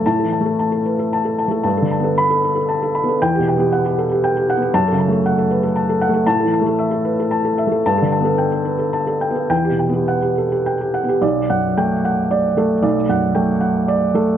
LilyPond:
<<
  \new Staff \with { instrumentName = "Felt piano" } { \time 3/4 \key b \minor \tempo 4 = 114 << { a''8 r2 r8 | r4 b''8 r4. | g''8 r2 r8 | a''8 r2 r8 |
a''8 r2 r8 | a''8 r2 r8 | g''8 r2 r8 | r4 g''8 r4. |
r2. | } \\ { r16 a'16 a''16 a'16 a''16 a'16 b'16 a'16 a''16 a'16 a''16 a'16 | a''16 a'16 a''16 a'8 a'16 b'16 a'16 a''16 a'16 b''16 a'16 | r16 g'16 g''16 g'16 fis''16 g'16 a'16 g'16 g''16 g'16 fis''16 g'16 | r16 a'8 a'16 fis''16 a'16 b'16 a'16 a''16 a'16 fis''16 a'16 |
r16 a'16 a''16 a'16 e''16 a'16 b'16 a'16 a''16 a'16 e''16 a'16 | r16 a'16 a''16 a'16 g''16 a'16 b'16 a'16 a''16 a'16 g''16 a'16 | r16 g'16 g''16 g'16 fis''16 g'16 a'16 g'16 g''16 g'16 fis''16 g'16 | d''8 fis''8. r16 fis''8 d''8 a'8 |
d''8 fis''8 g''8 fis''8 d''8 a'8 | } >> }
  \new Staff \with { instrumentName = "Felt piano" } { \clef bass \time 3/4 \key b \minor \tuplet 3/2 { a,8 e8 a8 } r4 \tuplet 3/2 { r4 a8 } | \tuplet 3/2 { g,8 d8 b8 } r4 \tuplet 3/2 { r4 b8 } | \tuplet 3/2 { e,8 b,8 b8 } r4 \tuplet 3/2 { r4 b8 } | \tuplet 3/2 { fis,8 cis8 a8 } r4 \tuplet 3/2 { r4 a8 } |
\tuplet 3/2 { a,8 e8 a8 } r4 \tuplet 3/2 { r4 a8 } | \tuplet 3/2 { g,8 d8 b8 } r4 \tuplet 3/2 { r4 b8 } | \tuplet 3/2 { e,8 b,8 b8 } r4 \tuplet 3/2 { r4 b8 } | b,,8 fis,8 a4 r8 a8 |
b,,8 fis,8 a4 r8 a8 | }
>>